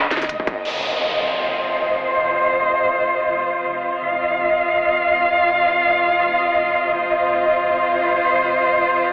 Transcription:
0.00 0.12 G#1 medium
0.00 0.63 D#5 medium
0.11 0.30 G1 medium
0.11 snare medium
0.11 closed hi-hat soft
0.17 snare soft
0.22 snare soft
0.22 open hi-hat medium
0.29 0.39 F1 loud
0.29 closed hi-hat medium
0.40 kick medium
0.47 kick loud
0.47 closed hi-hat soft
0.65 6.45 F1 medium
0.65 9.13 C3 medium
0.65 9.13 D#5 medium
0.65 crash medium
0.65 downlifter medium
0.80 9.13 F3 medium
0.80 9.13 F4 medium
1.14 4.06 C5 medium
4.05 6.97 F5 medium
6.46 9.13 F1 medium
6.95 9.13 C5 medium

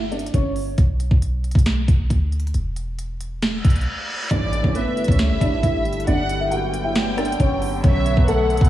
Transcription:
0.00 0.30 G1 loud
0.00 0.10 E4 medium
0.11 0.30 D4 medium
0.11 0.30 D5 medium
0.11 closed hi-hat soft
0.19 closed hi-hat medium
0.26 closed hi-hat medium
0.34 0.76 G1 loud
0.34 0.76 C#4 medium
0.34 0.75 C#5 medium
0.34 kick medium
0.34 closed hi-hat medium
0.56 open hi-hat medium
0.78 1.10 B1 loud
0.78 kick loud
0.78 closed hi-hat medium
1.00 closed hi-hat medium
1.11 1.53 B1 loud
1.11 kick loud
1.22 closed hi-hat medium
1.44 closed hi-hat soft
1.51 1.87 B1 loud
1.51 kick loud
1.51 closed hi-hat medium
1.59 closed hi-hat medium
1.66 snare loud
1.66 closed hi-hat medium
1.88 2.09 B1 loud
1.88 kick loud
1.88 closed hi-hat medium
2.10 2.53 D2 loud
2.10 kick medium
2.10 closed hi-hat medium
2.32 closed hi-hat soft
2.40 closed hi-hat medium
2.47 closed hi-hat medium
2.54 3.61 E1 loud
2.54 closed hi-hat medium
2.76 closed hi-hat medium
2.99 closed hi-hat medium
3.21 closed hi-hat medium
3.42 snare loud
3.42 closed hi-hat medium
3.42 reverse cymbal medium
3.65 3.86 B1 loud
3.65 kick loud
3.65 closed hi-hat medium
3.70 closed hi-hat medium
3.76 closed hi-hat medium
3.81 closed hi-hat soft
4.31 4.63 A1 loud
4.31 4.73 G2 loud
4.31 4.73 A2 loud
4.31 8.70 D3 medium
4.31 4.73 E3 loud
4.31 7.80 G3 medium
4.31 6.06 A3 medium
4.31 4.62 D4 medium
4.31 6.06 E4 medium
4.31 4.72 D5 loud
4.31 4.62 D5 loud
4.31 kick loud
4.31 closed hi-hat medium
4.31 impact medium
4.53 closed hi-hat medium
4.64 4.85 A1 loud
4.64 4.73 C#4 medium
4.64 4.73 C#5 medium
4.64 kick loud
4.75 5.07 B3 medium
4.75 5.06 B4 medium
4.75 6.04 E5 medium
4.75 closed hi-hat medium
4.97 closed hi-hat soft
5.04 5.32 C#2 loud
5.04 5.39 C#5 medium
5.04 kick loud
5.04 closed hi-hat medium
5.09 5.40 C#4 medium
5.09 closed hi-hat medium
5.19 snare loud
5.19 closed hi-hat medium
5.30 5.41 G1 loud
5.41 5.62 A1 loud
5.41 5.60 D4 medium
5.41 5.59 D5 medium
5.41 kick loud
5.41 closed hi-hat medium
5.63 5.87 A1 loud
5.63 6.05 E4 medium
5.63 6.05 E5 medium
5.63 kick medium
5.63 closed hi-hat medium
5.85 6.06 G1 loud
5.85 closed hi-hat soft
5.93 closed hi-hat medium
6.00 closed hi-hat medium
6.07 7.36 G1 loud
6.07 8.70 F#3 medium
6.07 8.70 B3 medium
6.07 6.39 D4 medium
6.07 6.38 D5 loud
6.07 6.49 F#5 loud
6.07 closed hi-hat medium
6.29 closed hi-hat medium
6.40 6.50 E4 medium
6.40 6.49 E5 medium
6.51 6.83 F#4 medium
6.51 6.82 F#5 medium
6.51 7.80 G5 medium
6.51 closed hi-hat medium
6.74 closed hi-hat medium
6.84 7.16 E4 medium
6.84 7.16 E5 medium
6.95 snare loud
6.95 closed hi-hat medium
7.17 7.36 D4 medium
7.17 7.36 D5 medium
7.17 cross-stick medium
7.17 closed hi-hat soft
7.25 closed hi-hat medium
7.32 closed hi-hat medium
7.40 7.82 G1 loud
7.40 7.82 C#4 medium
7.40 7.81 C#5 medium
7.40 kick medium
7.40 closed hi-hat medium
7.62 open hi-hat medium
7.84 8.16 B1 loud
7.84 8.26 B2 medium
7.84 8.26 D3 medium
7.84 8.26 F#3 loud
7.84 8.70 A3 medium
7.84 8.15 C#4 medium
7.84 8.15 C#5 loud
7.84 8.25 E5 loud
7.84 kick loud
7.84 closed hi-hat medium
8.06 closed hi-hat medium
8.17 8.59 B1 loud
8.17 8.26 B3 medium
8.17 8.26 B4 medium
8.17 kick loud
8.28 8.59 A3 medium
8.28 8.59 A4 loud
8.28 8.70 F#5 medium
8.28 closed hi-hat medium
8.50 closed hi-hat medium
8.57 8.70 B1 loud
8.57 kick loud
8.57 closed hi-hat medium
8.61 8.70 B3 medium
8.61 8.70 B4 medium
8.61 closed hi-hat medium

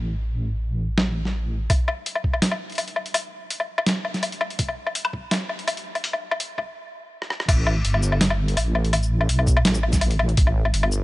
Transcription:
0.00 1.68 A1 medium
0.98 snare loud
1.25 snare soft
1.70 kick loud
1.70 closed hi-hat medium
1.70 low woodblock medium
1.88 low woodblock medium
2.06 closed hi-hat medium
2.15 low woodblock medium
2.24 kick medium
2.33 low woodblock medium
2.42 snare loud
2.42 closed hi-hat medium
2.52 low woodblock medium
2.70 closed hi-hat soft
2.72 closed hi-hat soft
2.75 closed hi-hat soft
2.78 closed hi-hat medium
2.78 low woodblock medium
2.88 closed hi-hat soft
2.96 low woodblock medium
3.06 closed hi-hat soft
3.14 closed hi-hat medium
3.14 low woodblock medium
3.50 closed hi-hat medium
3.60 low woodblock medium
3.78 low woodblock medium
3.87 snare loud
3.87 closed hi-hat medium
4.05 low woodblock medium
4.14 snare soft
4.14 closed hi-hat soft
4.23 closed hi-hat medium
4.23 low woodblock medium
4.32 closed hi-hat soft
4.41 low woodblock medium
4.50 closed hi-hat soft
4.59 kick loud
4.59 closed hi-hat medium
4.69 low woodblock soft
4.87 low woodblock medium
4.95 closed hi-hat medium
5.05 low woodblock medium
5.13 kick medium
5.31 snare loud
5.31 closed hi-hat medium
5.31 low woodblock medium
5.49 low woodblock soft
5.59 closed hi-hat soft
5.68 closed hi-hat medium
5.68 low woodblock medium
5.77 closed hi-hat soft
5.95 closed hi-hat soft
5.95 low woodblock medium
6.04 closed hi-hat medium
6.13 low woodblock medium
6.31 low woodblock medium
6.40 closed hi-hat medium
6.58 kick medium
6.58 low woodblock soft
7.22 cross-stick medium
7.30 cross-stick medium
7.40 cross-stick medium
7.49 7.83 A1 loud
7.49 kick loud
7.49 closed hi-hat medium
7.49 crash loud
7.49 low woodblock medium
7.67 low woodblock medium
7.85 8.56 G1 loud
7.85 closed hi-hat medium
7.94 low woodblock medium
8.03 shaker medium
8.12 low woodblock medium
8.21 snare loud
8.21 closed hi-hat medium
8.30 low woodblock medium
8.48 closed hi-hat soft
8.57 9.28 A1 loud
8.57 closed hi-hat medium
8.57 low woodblock medium
8.75 low woodblock medium
8.85 closed hi-hat soft
8.93 closed hi-hat medium
8.93 low woodblock medium
9.03 shaker soft
9.21 low woodblock medium
9.29 9.64 B1 loud
9.29 closed hi-hat medium
9.39 low woodblock medium
9.47 kick medium
9.47 shaker medium
9.57 low woodblock medium
9.65 10.36 A1 loud
9.65 snare loud
9.65 closed hi-hat medium
9.75 shaker medium
9.83 low woodblock medium
9.93 kick medium
9.93 snare soft
9.93 closed hi-hat soft
9.93 shaker medium
10.01 closed hi-hat medium
10.01 low woodblock medium
10.11 closed hi-hat soft
10.19 low woodblock medium
10.29 closed hi-hat soft
10.37 10.72 A1 loud
10.37 kick loud
10.37 closed hi-hat medium
10.47 low woodblock soft
10.65 low woodblock medium
10.73 11.04 G1 loud
10.73 closed hi-hat medium
10.83 low woodblock medium
10.92 shaker medium

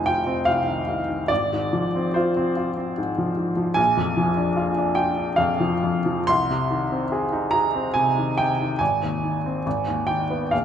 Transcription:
0.00 1.26 F1 soft
0.00 0.48 C2 soft
0.00 0.67 D#3 soft
0.00 0.27 C4 soft
0.00 0.19 D#4 soft
0.00 0.07 F4 soft
0.00 1.32 G#5 medium
0.06 0.39 F4 soft
0.06 0.46 G5 medium
0.27 0.59 C4 soft
0.45 0.80 C2 soft
0.45 1.30 F5 medium
0.67 1.01 D#3 soft
0.88 1.22 C2 soft
1.09 1.30 D#3 soft
1.28 3.75 G#1 medium
1.28 2.14 D5 medium
1.53 1.86 G#2 soft
1.73 2.07 F3 soft
1.96 2.29 C4 soft
2.14 2.49 F4 soft
2.14 2.98 C5 medium
2.37 2.70 C4 soft
2.57 2.90 F4 soft
2.77 3.10 C4 soft
2.98 3.30 G#2 soft
3.18 3.50 F3 soft
3.37 3.70 G#2 soft
3.57 3.78 F3 soft
3.74 6.23 A#1 medium
3.74 4.95 G#5 medium
3.97 4.30 F2 soft
4.17 4.49 F3 soft
4.37 4.69 D4 soft
4.56 4.89 F4 soft
4.77 5.09 D4 soft
4.95 5.29 F4 soft
4.95 5.37 G5 medium
5.17 5.51 D4 soft
5.36 5.73 F2 soft
5.36 6.27 F5 medium
5.60 5.97 F3 soft
5.83 6.19 F2 soft
6.06 6.28 F3 soft
6.27 8.77 C2 medium
6.27 7.53 C6 medium
6.50 6.83 C3 soft
6.71 7.04 D#3 soft
6.92 7.24 C4 soft
7.12 7.45 G#4 soft
7.33 7.66 D#4 soft
7.51 7.87 G#4 soft
7.51 7.94 A#5 medium
7.74 8.08 C4 soft
7.94 8.30 C3 soft
7.94 8.37 G#5 medium
8.18 8.51 D#3 soft
8.38 8.73 C3 soft
8.38 8.80 G5 medium
8.61 8.81 D#3 soft
8.79 9.63 G#1 soft
8.79 10.07 G#5 medium
9.03 9.37 D#2 soft
9.24 9.57 D#3 soft
9.46 9.66 C4 soft
9.66 10.50 G#1 medium
9.88 10.22 D#2 soft
10.07 10.43 D#3 soft
10.07 10.52 G5 medium
10.30 10.53 B3 soft
10.51 10.65 A#1 soft
10.51 10.65 F5 medium

